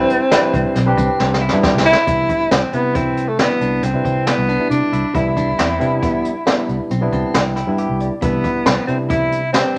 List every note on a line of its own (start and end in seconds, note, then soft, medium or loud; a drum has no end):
0.00 0.19 G3 medium
0.00 1.64 C4 loud
0.00 0.20 D4 medium
0.00 0.20 E4 loud
0.00 1.64 E4 medium
0.00 0.16 B4 medium
0.00 0.20 B4 medium
0.10 closed hi-hat medium
0.31 0.76 G3 medium
0.31 0.77 D4 medium
0.31 0.77 E4 medium
0.31 0.60 B4 medium
0.31 0.76 B4 medium
0.31 snare loud
0.31 closed hi-hat medium
0.54 0.63 C2 medium
0.54 kick medium
0.54 closed hi-hat medium
0.75 0.94 B1 medium
0.75 0.90 C4 medium
0.75 snare soft
0.75 closed hi-hat medium
0.86 1.40 G3 medium
0.86 1.41 D4 medium
0.86 1.41 G4 loud
0.86 1.40 B4 medium
0.97 1.07 C2 medium
0.97 1.26 C4 medium
0.97 kick medium
0.97 closed hi-hat medium
1.20 1.47 C2 medium
1.20 snare medium
1.34 snare medium
1.42 1.55 E4 medium
1.49 1.71 G2 medium
1.49 1.97 G3 medium
1.49 1.97 B3 medium
1.49 snare medium
1.53 1.97 D4 medium
1.53 1.98 E4 medium
1.63 1.91 G4 medium
1.63 kick loud
1.63 snare medium
1.74 1.93 C2 medium
1.74 snare medium
1.86 2.47 E4 loud
1.93 snare medium
2.07 2.26 C2 medium
2.07 2.61 G3 medium
2.07 2.61 B3 medium
2.07 2.61 D4 medium
2.07 2.35 E4 medium
2.07 2.62 E4 medium
2.07 kick loud
2.07 closed hi-hat medium
2.29 kick medium
2.29 closed hi-hat medium
2.51 2.60 C2 medium
2.51 2.79 C4 medium
2.51 2.75 C4 medium
2.51 snare medium
2.51 closed hi-hat medium
2.73 3.47 C3 medium
2.73 3.27 G3 medium
2.73 2.97 B3 medium
2.73 3.27 D4 medium
2.73 3.28 E4 medium
2.73 3.27 B4 medium
2.73 closed hi-hat medium
2.95 3.30 C4 medium
2.95 3.23 E4 medium
2.95 kick medium
2.95 closed hi-hat medium
3.17 closed hi-hat medium
3.28 3.39 A3 medium
3.39 3.84 G3 medium
3.39 3.84 B3 medium
3.39 3.85 B3 medium
3.39 3.53 C4 medium
3.39 3.84 D4 medium
3.39 3.84 E4 medium
3.39 snare medium
3.39 closed hi-hat medium
3.61 3.79 C2 medium
3.61 3.89 D4 medium
3.61 closed hi-hat medium
3.83 3.92 C2 medium
3.83 4.29 C4 medium
3.83 snare soft
3.83 closed hi-hat medium
3.93 4.03 C3 medium
3.93 4.47 G3 medium
3.93 4.48 D4 medium
3.93 4.48 E4 medium
3.93 4.48 B4 medium
4.05 4.33 C3 medium
4.05 4.33 C4 medium
4.05 kick medium
4.05 closed hi-hat soft
4.27 4.70 B3 medium
4.27 snare loud
4.27 closed hi-hat medium
4.37 4.56 C2 medium
4.49 4.77 D4 medium
4.49 closed hi-hat medium
4.59 5.04 G3 medium
4.59 5.04 B3 medium
4.59 5.05 D4 medium
4.59 5.05 E4 medium
4.70 4.80 C3 medium
4.70 5.17 D4 medium
4.70 closed hi-hat medium
4.92 5.02 C2 medium
4.92 5.07 E4 medium
4.92 closed hi-hat medium
5.13 5.52 C2 medium
5.13 5.68 G3 medium
5.13 5.68 B3 medium
5.13 5.68 D4 medium
5.13 5.29 E4 medium
5.13 5.69 E4 medium
5.13 6.91 E4 medium
5.13 kick medium
5.13 closed hi-hat medium
5.37 5.51 D4 medium
5.37 kick medium
5.37 closed hi-hat medium
5.59 5.77 E2 medium
5.59 5.87 C4 medium
5.59 snare loud
5.59 closed hi-hat medium
5.79 5.99 C3 medium
5.79 6.34 G3 medium
5.79 6.34 B3 medium
5.79 6.34 D4 medium
5.79 6.35 E4 medium
5.79 closed hi-hat medium
6.02 6.31 B3 medium
6.02 kick loud
6.02 closed hi-hat medium
6.25 closed hi-hat medium
6.46 6.91 G3 medium
6.46 6.91 B3 medium
6.46 6.75 B3 medium
6.46 6.92 D4 medium
6.46 6.92 E4 medium
6.46 snare medium
6.46 closed hi-hat medium
6.69 6.78 C2 medium
6.69 closed hi-hat medium
6.90 7.09 B1 medium
6.90 7.05 C4 medium
6.90 closed hi-hat medium
7.01 7.55 G3 medium
7.01 7.55 B3 medium
7.01 7.56 D4 medium
7.01 7.56 E4 medium
7.12 7.22 C2 medium
7.12 7.41 C4 medium
7.12 7.33 A5 medium
7.12 kick medium
7.12 closed hi-hat soft
7.34 7.62 C2 medium
7.34 7.55 G5 medium
7.34 snare loud
7.34 closed hi-hat medium
7.56 7.70 E4 medium
7.56 7.77 G5 medium
7.56 snare soft
7.56 closed hi-hat medium
7.67 7.86 G2 medium
7.67 8.12 G3 medium
7.67 8.12 B3 medium
7.67 8.13 D4 medium
7.67 8.13 E4 medium
7.78 8.07 G4 medium
7.78 7.99 E5 medium
7.78 closed hi-hat medium
7.89 8.08 C2 medium
8.00 8.21 D5 medium
8.00 closed hi-hat soft
8.22 8.41 C2 medium
8.22 8.76 G3 medium
8.22 8.76 B3 medium
8.22 8.85 B3 medium
8.22 8.76 D4 medium
8.22 8.50 E4 medium
8.22 8.77 E4 medium
8.22 kick loud
8.22 closed hi-hat medium
8.44 kick medium
8.44 closed hi-hat medium
8.66 8.76 C2 medium
8.66 8.94 C4 medium
8.66 snare loud
8.66 closed hi-hat medium
8.87 9.62 C3 medium
8.87 9.42 G3 medium
8.87 9.42 B3 medium
8.87 8.97 C4 medium
8.87 9.43 D4 medium
8.87 9.43 E4 medium
8.87 closed hi-hat medium
9.09 9.51 E4 medium
9.09 9.38 E4 medium
9.09 kick loud
9.09 closed hi-hat medium
9.32 closed hi-hat medium
9.53 9.78 G3 medium
9.53 9.78 C4 medium
9.53 9.68 C4 medium
9.53 9.78 D4 medium
9.53 9.78 G4 medium
9.53 9.78 B4 medium
9.53 snare loud
9.53 closed hi-hat medium